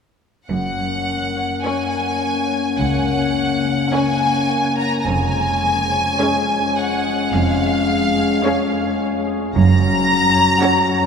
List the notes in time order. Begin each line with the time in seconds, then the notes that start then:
0.48 F#1 F#2 A#3 C#4 F#5
0.79 C#4
1.08 A#4
1.37 C#5
1.65 A#3 C#4 A#4 C#5 G#5
1.93 A#5
2.21 C#5
2.50 A#4
2.77 C#2 C#3 F#5
3.06 C#4
3.34 A#4
3.64 C#5
3.92 A#3 C#4 A#4 C#5 G#5
4.21 A#5
4.49 C#5
4.78 A#4 A#5
5.00 A#5
5.06 F1 F2 G#3 C#4 G#5
5.35 C#4
5.63 G#4
5.91 C#5
6.20 G#3 C#4 G#4 C#5
6.76 C#5 F#5
7.05 G#4
7.33 F1 F2 F5
7.61 C#4
7.89 G#4
8.17 C#5
8.45 G#3 C#4 G#4 C#5
8.73 G#5
9.01 C#5
9.27 G#4
9.54 F#1 F#2 F#3 C#4 A#5
9.81 C#4
10.08 F#4
10.34 C#5
10.61 F#3 C#4 F#4 C#5
10.88 F#5